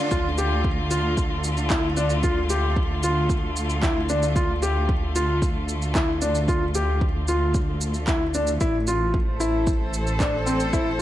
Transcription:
Already playing: string quartet D3 A3 F4, riser
0.11 detuned saw bass D2, felt piano F4, kick, shaker
0.38 felt piano G4, shaker
0.64 kick
0.91 felt piano F4, shaker
1.17 kick, shaker
1.44 shaker
1.57 shaker
1.70 felt piano E4, kick, clap, shaker
1.97 felt piano D4, shaker
2.10 shaker
2.23 felt piano F4, kick, shaker
2.50 felt piano G4, shaker
2.76 kick
3.03 felt piano F4, shaker
3.30 kick, shaker
3.56 shaker
3.70 shaker
3.83 felt piano E4, kick, clap, shaker
4.09 felt piano D4, shaker
4.23 shaker
4.36 felt piano F4, kick, shaker
4.62 felt piano G4, shaker
4.89 kick
5.16 felt piano F4, shaker
5.42 kick, shaker
5.69 shaker
5.82 shaker
5.95 felt piano E4, kick, clap, shaker
6.22 felt piano D4, shaker
6.35 shaker
6.48 felt piano F4, kick, shaker
6.75 felt piano G4, shaker
7.01 kick
7.28 felt piano F4, shaker
7.54 kick, shaker
7.81 shaker
7.94 shaker
8.07 felt piano E4, kick, clap, shaker
8.34 felt piano D4, shaker
8.47 shaker
8.61 detuned saw bass A1, felt piano E4, kick, shaker
8.87 felt piano F4, shaker
9.14 kick
9.21 string quartet C5
9.32 string quartet A4
9.40 felt piano E4, shaker
9.67 kick, shaker
9.93 shaker
10.07 shaker
10.20 felt piano D4, kick, clap, shaker
10.46 felt piano C4, shaker
10.60 shaker
10.73 felt piano E4, kick, shaker

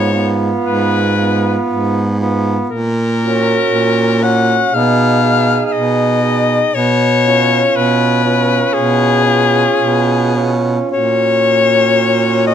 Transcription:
Already playing: baritone saxophone G#2, tenor saxophone B3, alto saxophone F4, soprano saxophone C#5
0.13 tenor saxophone B3, alto saxophone F4
0.64 baritone saxophone G#2, soprano saxophone B4
1.17 tenor saxophone B3, alto saxophone F4
1.68 baritone saxophone G#2
2.19 tenor saxophone B3, alto saxophone F4
2.69 baritone saxophone A#2, soprano saxophone A#4
3.20 tenor saxophone C#4, alto saxophone F#4
3.71 baritone saxophone A#2
4.22 tenor saxophone C#4, alto saxophone F#4, soprano saxophone F#5
4.72 baritone saxophone B2, tenor saxophone D#4, alto saxophone G#4, soprano saxophone F5
5.23 tenor saxophone D#4, alto saxophone G#4
5.66 soprano saxophone F5
5.72 baritone saxophone B2, soprano saxophone D#5
6.22 tenor saxophone D#4, alto saxophone G#4
6.74 baritone saxophone B2, soprano saxophone C#5
7.25 tenor saxophone C#4, alto saxophone F4
7.75 baritone saxophone B2, soprano saxophone B4
8.24 tenor saxophone C#4, alto saxophone F4
8.74 baritone saxophone B2, soprano saxophone G#4
9.25 tenor saxophone C#4, alto saxophone F4
9.79 baritone saxophone B2
10.36 tenor saxophone C#4, alto saxophone F4
10.91 baritone saxophone A#2, tenor saxophone C#4, alto saxophone F#4, soprano saxophone C#5
12.47 soprano saxophone D#5

